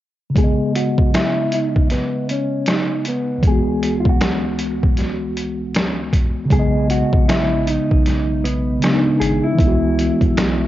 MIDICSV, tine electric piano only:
0, 0, Header, 1, 2, 480
1, 0, Start_track
1, 0, Key_signature, 5, "major"
1, 0, Tempo, 769231
1, 225, Time_signature, 4, 2, 24, 8
1, 6662, End_track
2, 0, Start_track
2, 0, Title_t, "Tine electric piano"
2, 0, Program_c, 0, 4
2, 187, Note_on_c, 0, 49, 56
2, 217, Note_on_c, 0, 56, 51
2, 247, Note_on_c, 0, 59, 56
2, 274, Note_on_c, 0, 75, 60
2, 349, Control_c, 0, 64, 127
2, 2101, Note_off_c, 0, 49, 0
2, 2108, Note_on_c, 0, 37, 55
2, 2116, Note_off_c, 0, 56, 0
2, 2131, Note_off_c, 0, 59, 0
2, 2131, Note_on_c, 0, 52, 49
2, 2144, Note_off_c, 0, 75, 0
2, 2153, Note_on_c, 0, 56, 55
2, 2154, Control_c, 0, 64, 0
2, 2173, Note_on_c, 0, 59, 54
2, 2196, Note_on_c, 0, 66, 64
2, 2243, Control_c, 0, 64, 127
2, 4021, Note_off_c, 0, 37, 0
2, 4027, Note_on_c, 0, 49, 64
2, 4033, Note_off_c, 0, 52, 0
2, 4044, Note_off_c, 0, 56, 0
2, 4054, Note_off_c, 0, 59, 0
2, 4059, Note_on_c, 0, 56, 49
2, 4066, Note_off_c, 0, 66, 0
2, 4073, Control_c, 0, 64, 0
2, 4086, Note_on_c, 0, 59, 55
2, 4114, Note_on_c, 0, 75, 65
2, 4168, Control_c, 0, 64, 127
2, 5461, Note_off_c, 0, 49, 0
2, 5477, Note_off_c, 0, 56, 0
2, 5489, Note_on_c, 0, 49, 49
2, 5490, Note_off_c, 0, 59, 0
2, 5502, Note_on_c, 0, 56, 42
2, 5504, Note_off_c, 0, 75, 0
2, 5516, Note_on_c, 0, 59, 41
2, 5532, Note_on_c, 0, 62, 41
2, 5569, Note_off_c, 0, 62, 0
2, 5573, Note_on_c, 0, 63, 57
2, 5951, Note_on_c, 0, 52, 69
2, 5971, Note_off_c, 0, 56, 0
2, 5977, Note_off_c, 0, 49, 0
2, 5978, Note_on_c, 0, 56, 55
2, 5990, Note_off_c, 0, 59, 0
2, 5993, Control_c, 0, 64, 0
2, 6008, Note_on_c, 0, 59, 58
2, 6019, Note_off_c, 0, 63, 0
2, 6038, Note_on_c, 0, 66, 68
2, 6098, Control_c, 0, 64, 127
2, 6662, Note_off_c, 0, 52, 0
2, 6662, Note_off_c, 0, 56, 0
2, 6662, Note_off_c, 0, 59, 0
2, 6662, Note_off_c, 0, 66, 0
2, 6662, End_track
0, 0, End_of_file